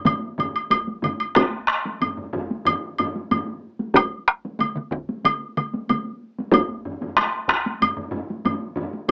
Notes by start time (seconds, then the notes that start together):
0.05 taiko low-mid, taiko mid, taiko high, high woodblock
0.22 taiko high
0.38 taiko low-mid, taiko mid, taiko high, high woodblock
0.55 taiko high, high woodblock
0.71 taiko, taiko high, high woodblock
0.87 taiko high
1.02 taiko low-mid, taiko mid, taiko high, high woodblock
1.20 taiko high, high woodblock
1.35 taiko rim, taiko, taiko high, high woodblock
1.67 taiko rim
1.85 taiko high
2.01 taiko low-mid, taiko high, high woodblock
2.17 taiko low-mid
2.33 taiko, taiko low-mid
2.51 taiko high
2.65 taiko low-mid, taiko high, high woodblock
2.98 taiko low-mid, taiko high, high woodblock
3.16 taiko high
3.31 taiko low-mid, taiko high, high woodblock
3.80 taiko high
3.94 taiko rim, taiko, taiko high, high woodblock
4.28 taiko rim
4.45 taiko high
4.59 taiko mid, taiko high, high woodblock
4.76 taiko mid
4.91 taiko, taiko mid
5.09 taiko high
5.25 taiko mid, taiko high, high woodblock
5.57 taiko mid, taiko high, high woodblock
5.74 taiko high
5.89 taiko mid, taiko high, high woodblock
6.39 taiko high
6.52 taiko, taiko low-mid, taiko high, high woodblock
6.85 taiko low-mid
7.02 taiko low-mid, taiko high
7.17 taiko rim, taiko high, high woodblock
7.48 taiko rim, taiko
7.66 taiko high
7.81 taiko low-mid, taiko high, high woodblock
7.97 taiko low-mid
8.12 taiko low-mid, taiko high
8.30 taiko high
8.45 taiko low-mid, taiko high, high woodblock
8.77 taiko low-mid
8.93 taiko high